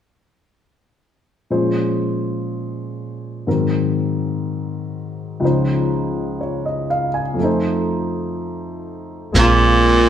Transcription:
1.50 upright piano A#2 F3 G#3 C#4 C5
3.47 upright piano G#2 D#3 F#3 C4 A#4
5.40 upright piano C#2 C#3 F3 D#4
5.45 upright piano C5
6.41 upright piano C#5
6.66 upright piano D#5
6.90 upright piano F5
7.14 upright piano G#5
7.34 upright piano F2 F3
7.40 upright piano A3 D#4
7.44 upright piano C5
9.32 upright bass A#1, upright piano G#3 A#3 C4, brush sweep, snare
9.38 baritone saxophone A#2, upright piano F4

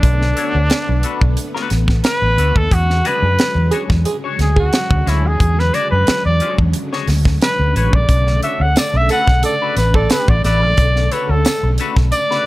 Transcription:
Already playing: string machine D3 A3, trumpet D4
0.03 fingered electric bass B1, string machine B3, kick, closed hi-hat
0.22 snare
0.36 clean electric guitar A3 D4 F#4 C#5, closed hi-hat
0.55 fingered electric bass D2
0.70 snare, closed hi-hat
0.89 fingered electric bass B1, muted clean electric guitar stroke
1.03 clean electric guitar A3 D4 F#4 B4, closed hi-hat
1.21 fingered electric bass B1, muted clean electric guitar stroke, kick
1.37 muted clean electric guitar stroke, closed hi-hat
1.54 clean electric guitar A3 D4 F#4 B4, snare
1.70 fingered electric bass A1, muted clean electric guitar stroke, snare, closed hi-hat
1.88 muted clean electric guitar stroke, kick, snare
2.04 trumpet B4, muted clean electric guitar stroke, snare, closed hi-hat
2.22 fingered electric bass A1
2.38 fingered electric bass D2, clean electric guitar A3 D4 F#4 B4, closed hi-hat
2.55 fingered electric bass D#2, trumpet A4, muted clean electric guitar stroke, kick
2.71 fingered electric bass E2, string machine C#3 D3 F#3 G#3, trumpet F#4, kick, closed hi-hat
2.90 snare
3.05 clean electric guitar D4 F#4 G#4 D5, trumpet B4, closed hi-hat
3.22 fingered electric bass F#2
3.39 snare, closed hi-hat
3.55 fingered electric bass E2, muted clean electric guitar stroke
3.71 clean electric guitar D4 F#4 G#4 C#5, tenor saxophone G#4, closed hi-hat
3.90 fingered electric bass E2, muted clean electric guitar stroke, kick, snare
4.05 tenor saxophone G#4, muted clean electric guitar stroke, closed hi-hat
4.24 clean electric guitar D4 F#4 G#4 C#5
4.39 fingered electric bass D2, trumpet G#4, snare, closed hi-hat
4.56 trumpet F#4, tenor saxophone G#4, muted clean electric guitar stroke, kick
4.73 muted clean electric guitar stroke, snare, closed hi-hat
4.91 fingered electric bass D2, kick
5.06 fingered electric bass D2, clean electric guitar D4 F#4 G#4 C#5, trumpet E4, snare, closed hi-hat
5.24 fingered electric bass D#2, trumpet G#4, muted clean electric guitar stroke
5.40 fingered electric bass E2, kick, closed hi-hat
5.59 trumpet B4, snare
5.74 clean electric guitar D4 F#4 G#4 D5, trumpet D5, closed hi-hat
5.91 fingered electric bass F#2, trumpet B4
6.07 muted fingered electric bass stroke, snare, closed hi-hat
6.25 fingered electric bass E2, trumpet D5, muted clean electric guitar stroke
6.40 clean electric guitar D4 F#4 G#4 C#5, closed hi-hat
6.58 fingered electric bass E2, muted clean electric guitar stroke, kick
6.73 muted clean electric guitar stroke, closed hi-hat
6.93 clean electric guitar D4 F#4 G#4 C#5, snare
7.07 fingered electric bass D2, snare, open hi-hat
7.25 muted clean electric guitar stroke, kick, snare
7.41 trumpet B4, muted clean electric guitar stroke, snare, closed hi-hat
7.59 fingered electric bass D2
7.75 fingered electric bass A1, clean electric guitar D4 F#4 G#4 C#5, trumpet B4, closed hi-hat
7.93 fingered electric bass A#1, trumpet D5, muted clean electric guitar stroke, kick
8.09 fingered electric bass B1, string machine A3, kick, closed hi-hat
8.27 snare
8.43 clean electric guitar A3 D4 F#4 C#5, trumpet E5, closed hi-hat
8.60 fingered electric bass D2, trumpet F#5
8.76 trumpet D5, snare, closed hi-hat, tambourine
8.94 fingered electric bass B1, trumpet E5, muted clean electric guitar stroke
9.09 clean electric guitar A3 D4 F#4 B4, tenor saxophone A4, trumpet F#5, closed hi-hat, tambourine
9.28 fingered electric bass B1, muted clean electric guitar stroke, kick, snare
9.43 tenor saxophone A4, trumpet D5, muted clean electric guitar stroke, closed hi-hat, tambourine
9.62 clean electric guitar A3 D4 F#4 B4
9.76 fingered electric bass A1, trumpet B4, muted clean electric guitar stroke, snare, closed hi-hat, tambourine
9.94 tenor saxophone A4, trumpet D5, muted clean electric guitar stroke, kick
10.10 trumpet B4, muted clean electric guitar stroke, snare, closed hi-hat, tambourine
10.28 fingered electric bass A1, trumpet D5, kick
10.44 fingered electric bass A1, clean electric guitar A3 D4 F#4 B4, trumpet D5, snare, closed hi-hat, tambourine
10.62 fingered electric bass A#1, muted clean electric guitar stroke
10.77 fingered electric bass B1, kick, closed hi-hat
10.96 snare
11.12 clean electric guitar A3 D4 F#4 C#5, trumpet B4, closed hi-hat, tambourine
11.29 fingered electric bass D2, trumpet A4
11.45 snare, closed hi-hat, tambourine
11.63 fingered electric bass B1, muted clean electric guitar stroke
11.78 clean electric guitar A3 D4 F#4 B4, closed hi-hat, tambourine
11.97 fingered electric bass B1, muted clean electric guitar stroke, kick, snare
12.12 trumpet D5, muted clean electric guitar stroke, closed hi-hat, tambourine
12.31 clean electric guitar A3 D4 F#4 B4, snare

